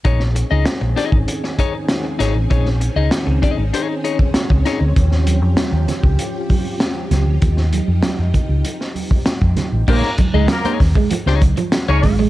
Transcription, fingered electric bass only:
\new Staff \with { instrumentName = "Fingered electric bass" } { \clef bass \time 4/4 \key bes \dorian \tempo 4 = 98 bes,,8. des,16 r16 bes,,16 r16 aes,,16 r4. aes,,16 a,,16 | bes,,8. des,16 r16 des,16 r16 aes,,16 r4 r16 des,16 r16 d,16 | ees,8. f,16 r16 ees,16 r16 des,16 r4. des,16 d,16 | ees,8. f,16 r16 f,16 r16 des,16 r4 r16 f,16 r16 a,,16 |
bes,,16 r8 des,16 r8 ees,16 r8 des,8 r8 des,16 aes,,16 a,,16 | }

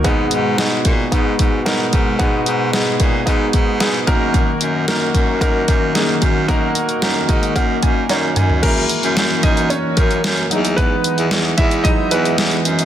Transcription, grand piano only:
<<
  \new Staff \with { instrumentName = "Grand piano" } { \time 4/4 \key gis \minor \tempo 4 = 112 << { r1 | r1 | r1 | r4. dis''8 fis''8 gis''8 ais''8 gis''8 |
ais'4 r8 <dis' dis''>8 <cis' cis''>8 <ais ais'>4 r8 | <b b'>4 r8 <e' e''>8 dis''8 <b b'>4 r8 | } \\ { <b dis' fis' gis'>4 <b dis' fis' gis'>4 <b dis' fis' gis'>4 <b dis' fis' ais'>4 | <b dis' fis' gis'>4 <b dis' fis' gis'>4 <b dis' fis' gis'>4 <b dis' fis' gis'>8 <ais dis' fis' ais'>8~ | <ais dis' fis' ais'>8. r16 <ais dis' fis' ais'>4 <ais dis' fis' ais'>4 <ais dis' fis' gis'>4 | <ais dis' fis' ais'>4 <ais dis' fis' ais'>4 <ais dis' fis' ais'>4 <ais dis' fis' cis''>4 |
r1 | r1 | } >> }
  \new Staff \with { instrumentName = "Grand piano" } { \clef bass \time 4/4 \key gis \minor gis,4. r2 r8 | gis,4. r2 r8 | r1 | r1 |
<gis ais e'>4. r2 <fis gis dis'>8 | r2 <fis gis dis'>8 r4. | }
>>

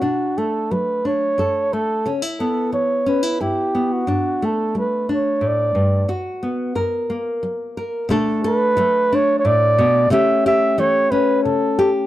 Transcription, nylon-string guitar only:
\new Staff \with { instrumentName = "Nylon-string guitar" } { \time 3/4 \key b \minor \tempo 4 = 89 << { d'8 a4 d'8 a'8 a8 | cis'16 e'16 b4 cis'16 e'16 e'8 b8 | d'8 a4 d'4. | fis'8 b8 ais'8 ais4 ais'8 |
<a d' a'>8 a'8 a8 d'4. | <a cis' g'>8 g'8 a8 cis'4 g'8 | } \\ { b,4 fis4 fis,4 | cis4 e4 g,4 | g,4 g4 a,8 g,8 | fis,4 fis,4 fis4 |
b,4 fis4 a,8 b,8 | cis4 e4 cis4 | } >> }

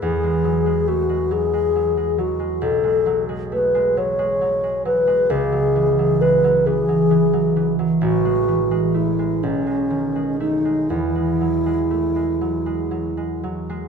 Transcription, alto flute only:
\new Staff \with { instrumentName = "Alto flute" } { \time 6/8 \key e \major \tempo 4. = 44 gis'4 fis'8 gis'4 fis'8 | a'4 b'8 cis''4 b'8 | gis'4 b'8 gis'4 r8 | fis'4 e'8 cis'4 dis'8 |
e'2~ e'8 r8 | }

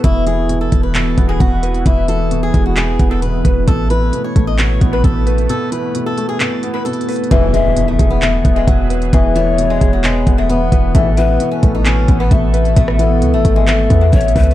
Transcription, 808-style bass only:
\new Staff \with { instrumentName = "808-style bass" } { \clef bass \time 4/4 \key e \major \tempo 4 = 132 e,,4. e,,4 dis,,8 e,,4 | e,,4. e,,4 e,,4 e,,8 | a,,4 r8 a,,4 a,,8 a,,4 | r1 |
e,,4. e,,4 dis,,8 e,,4 | e,,4. e,,4 e,,4 e,,8 | a,,4 r8 a,,4 a,,8 a,,4 | a,,4 cis,16 a,,16 gis,,4 e,8 a,,8 cis,8 | }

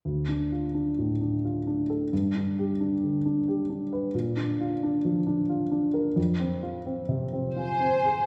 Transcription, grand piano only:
\new Staff \with { instrumentName = "Grand piano" } { \time 3/4 \key d \minor \tempo 4 = 88 \tuplet 3/2 { d,8 d'8 f'8 d'8 a,8 d'8 f'8 d'8 a'8 } | \tuplet 3/2 { g,8 d'8 g'8 d'8 d8 d'8 g'8 d'8 b'8 } | \tuplet 3/2 { bes,8 d'8 f'8 d'8 f8 d'8 f'8 d'8 bes'8 } | \tuplet 3/2 { f,8 c'8 f'8 c'8 c8 c'8 f'8 c'8 aes'8 } | }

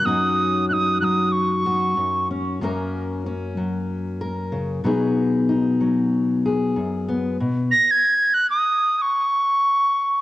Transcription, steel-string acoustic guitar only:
\new Staff \with { instrumentName = "Steel-string acoustic guitar" } { \time 4/4 \key b \lydian \tempo 4 = 94 << { <fis cis' dis' fis'>4 dis'4. fis'4 cis'8 | <fis ais cis' ais'>4 cis'4. ais'4 <fis b dis' gis'>8~ | <fis b dis' gis'>8 dis'4. gis'4 b8 r8 | r1 | } \\ { fis,4. fis4. fis,4 | fis,4. fis4. cis8 b,8~ | b,4 fis4. fis,4 b,8 | r1 | } >> }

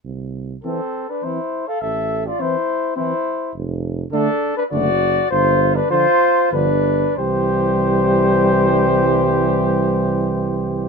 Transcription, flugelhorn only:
\new Staff \with { instrumentName = "Flugelhorn" } { \time 3/4 \key c \major \tempo 4 = 101 r4 c'8. d'16 e'8. a'16 | a'8. f'16 e'4 e'4 | r4 d'8. d'16 fis'4 | f'8. d'16 f'4 d'4 |
g'2.~ | g'2. | }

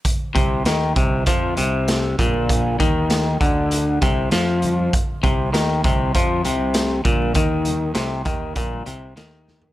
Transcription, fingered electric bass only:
\new Staff \with { instrumentName = "Fingered electric bass" } { \clef bass \time 4/4 \key c \minor \tempo 4 = 99 r8 c,8 ees,8 c,8 f,8 c,4 bes,,8~ | bes,,8 ees,4 d,4 c,8 f,4 | r8 c,8 ees,8 c,8 f,8 c,4 bes,,8 | ees,4 c,8 ees,8 bes,,8 c,8 ees,4 | }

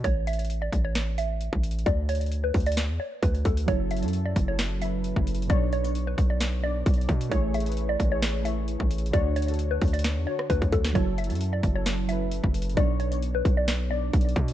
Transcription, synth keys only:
\new Staff \with { instrumentName = "Synth keys" } { \time 4/4 \key b \dorian \tempo 4 = 132 r1 | r1 | <fis cis' e' a'>8. <fis cis' e' a'>4 <fis cis' e' a'>8. <fis cis' e' b'>4. | <b, b d' cis''>8. <b, b d' cis''>4.~ <b, b d' cis''>16 <b, b d' d''>4. |
<a e' gis' cis''>8. <a e' gis' b'>4 <a e' gis' cis''>8. <a e' gis' cis''>4. | <d d' fis' cis''>8. <d d' fis' a'>4.~ <d d' fis' a'>16 <d d' fis' cis''>4. | <fis cis' e' a'>8. <fis cis' e' a'>4 <fis cis' e' a'>8. <fis cis' e' b'>4. | <b, b d' cis''>8. <b, b d' cis''>4.~ <b, b d' cis''>16 <b, b d' d''>4. | }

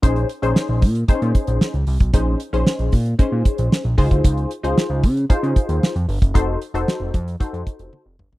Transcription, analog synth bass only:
\new Staff \with { instrumentName = "Analog synth bass" } { \clef bass \time 4/4 \key bes \minor \tempo 4 = 114 bes,,8 r16 bes,,16 r16 bes,,16 bes,8 bes,16 bes,16 r16 bes,,16 r16 des,16 c,16 ces,16 | bes,,8 r16 bes,,16 r16 bes,,16 bes,8 bes,16 bes,16 r16 bes,,16 r16 bes,,16 des,16 d,16 | des,8 r16 des,16 r16 des,16 des8 des16 des16 r16 ees,16 r16 f,16 g,,16 ges,,16 | f,,8 r16 f,,16 r16 f,,16 f,8 f,16 f,16 r16 f,,16 r16 f,,16 g,,16 ges,,16 | }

